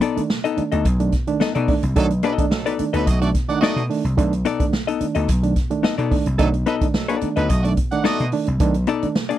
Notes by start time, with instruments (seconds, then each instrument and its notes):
0.01 reed electric piano B2, hollow-body jazz guitar B3 D#4 A4 D5, closed hi-hat
0.16 reed electric piano D#3 A3 D4, muted slap bass stroke, closed hi-hat
0.29 reed electric piano B2, snare
0.44 hollow-body jazz guitar B3 D#4 A4 D#5, closed hi-hat
0.57 reed electric piano D#3 A3 D4, muted slap bass stroke, closed hi-hat
0.72 slap bass D2, reed electric piano A3 D4, hollow-body jazz guitar B3 D#4 A4 D#5, closed hi-hat
0.85 slap bass B1, kick, closed hi-hat
0.99 reed electric piano D#3 A3 D4, closed hi-hat
1.12 reed electric piano B2, kick, snare, closed hi-hat
1.27 reed electric piano D#3 A3 D4, closed hi-hat
1.40 hollow-body jazz guitar B3 D#4 A4 D#5, snare
1.55 slap bass B2, hollow-body jazz guitar B3 D#4 A4 D5, closed hi-hat
1.68 reed electric piano D#3 A3 D4, kick, open hi-hat
1.83 slap bass C2, closed hi-hat
1.96 slap bass B1, reed electric piano D#3 A3 D4, horn section F#3 D#4 A4, kick, closed hi-hat
2.10 closed hi-hat
2.23 reed electric piano B2, horn section F#3 D#4 B4, hollow-body jazz guitar B3 D#4 A4 D#5, closed hi-hat
2.38 reed electric piano D#3 A3 D4, muted slap bass stroke, kick, closed hi-hat
2.51 reed electric piano B2, horn section F#3 D#4 A4, snare
2.65 horn section F#3 D#4 B4, hollow-body jazz guitar B3 D#4 A4 D5, closed hi-hat
2.79 reed electric piano D#3 A3 D4, muted slap bass stroke, closed hi-hat
2.93 slap bass D2, horn section F#3 D#4 B4, hollow-body jazz guitar B3 D#4 A4 D#5, closed hi-hat
3.07 slap bass B1, horn section A3 F#4 D#5, kick, closed hi-hat
3.21 reed electric piano D#3 A3 D4, horn section A3 F#4 D5, closed hi-hat
3.34 reed electric piano B2, kick, snare, closed hi-hat
3.49 reed electric piano D#3 A3 D4, horn section D#4 D5 F#5, closed hi-hat
3.61 horn section A3 F#4 D#5, hollow-body jazz guitar B3 D#4 A4 D5, snare
3.76 slap bass B2, closed hi-hat
3.90 reed electric piano D#3 A3 D4, open hi-hat
4.04 slap bass C2, closed hi-hat
4.17 slap bass B1, reed electric piano D#3 A3 D4, kick, closed hi-hat
4.33 closed hi-hat
4.45 reed electric piano B2, hollow-body jazz guitar B3 D#4 A4 D5, closed hi-hat
4.59 reed electric piano D#3 A3 D4, muted slap bass stroke, kick, closed hi-hat
4.73 reed electric piano B2, snare
4.87 hollow-body jazz guitar B3 D#4 A4 D#5, closed hi-hat
5.01 reed electric piano D#3 A3 D4, muted slap bass stroke, closed hi-hat
5.15 slap bass D2, reed electric piano A3 D4, hollow-body jazz guitar B3 D#4 A4 D#5, closed hi-hat
5.28 slap bass B1, kick, closed hi-hat
5.43 reed electric piano D#3 A3 D4, closed hi-hat
5.56 reed electric piano B2, kick, snare, closed hi-hat
5.70 reed electric piano D#3 A3 D4, closed hi-hat
5.83 hollow-body jazz guitar B3 D#4 A4 D#5, snare
5.98 slap bass B2, hollow-body jazz guitar B3 D#4 A4 D5, closed hi-hat
6.11 reed electric piano D#3 A3 D4, kick, open hi-hat
6.26 slap bass C2, closed hi-hat
6.39 slap bass B1, reed electric piano D#3 A3 D4, horn section F#3 D#4 A4, kick, closed hi-hat
6.54 closed hi-hat
6.66 reed electric piano B2, horn section F#3 D#4 B4, hollow-body jazz guitar B3 D#4 A4 D#5, closed hi-hat
6.81 reed electric piano D#3 A3 D4, muted slap bass stroke, kick, closed hi-hat
6.94 reed electric piano B2, horn section F#3 D#4 A4, snare
7.08 horn section F#3 D#4 B4, hollow-body jazz guitar B3 D#4 A4 D5, closed hi-hat
7.21 reed electric piano D#3 A3 D4, muted slap bass stroke, closed hi-hat
7.36 slap bass D2, horn section F#3 D#4 B4, reed electric piano A3 D4, hollow-body jazz guitar B3 D#4 A4 D#5, closed hi-hat
7.49 slap bass B1, horn section A3 F#4 D#5, kick, closed hi-hat
7.63 reed electric piano D#3 A3 D4, horn section A3 F#4 D5, closed hi-hat
7.77 reed electric piano B2, kick, closed hi-hat
7.91 reed electric piano D#3 A3 D4, horn section D#4 D5 F#5, closed hi-hat
8.04 horn section A3 F#4 D#5, hollow-body jazz guitar B3 D#4 A4 D5, snare
8.20 slap bass B2, closed hi-hat
8.32 reed electric piano D#3 A3 D4, open hi-hat
8.47 slap bass C2, closed hi-hat
8.60 slap bass B1, reed electric piano D#3 A3 D4, kick, closed hi-hat
8.74 closed hi-hat
8.87 reed electric piano B2, hollow-body jazz guitar B3 D#4 A4 D5, closed hi-hat
9.02 reed electric piano D#3 A3 D4, muted slap bass stroke, closed hi-hat
9.15 reed electric piano B2, snare
9.29 hollow-body jazz guitar B3 D#4 A4 D#5, closed hi-hat